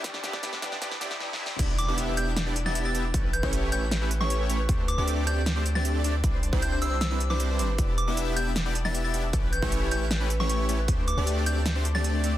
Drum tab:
CC |------------------------------------------------|x-----------------------------------------------|------------------------------------------------|------------------------------------------------|
HH |x-----x-----x-----x-----x-----x-----------------|x-----x-----x-----x-----x-----x-----x-----x-----|x-----x-----x-----x-----x-----x-----x-----x-----|x-----x-----x-----x-----x-----x-----x-----x-----|
SD |o--o--o--o--o--o--o--o--o--o--o--o--o---o---o---|------------------------o--------o--------------|------------------------o--------o--------------|------------------------o--------o--------------|
BD |o--------o--------o-----------------------------|o-----------------------------------------------|o--------o--------------------------------------|o-----------------------------------------------|

CC |------------------------------------------------|------------------------------------------------|------------------------------------------------|------------------------------------------------|
HH |x-----x-----x-----x-----x-----x-----x-----x-----|x-----x-----x-----x-----x-----x-----x-----x-----|x-----x-----x-----x-----x-----x-----x-----x-----|x-----x-----x-----x-----x-----x-----x-----x-----|
SD |------------------------o--------o--------------|------------------------o--------o--------------|------------------------o--------o--------------|------------------------o--------o--------------|
BD |o--------o--------------------------------------|o-----------------------------------------------|o--------o--------------------------------------|o-----------------------------------------------|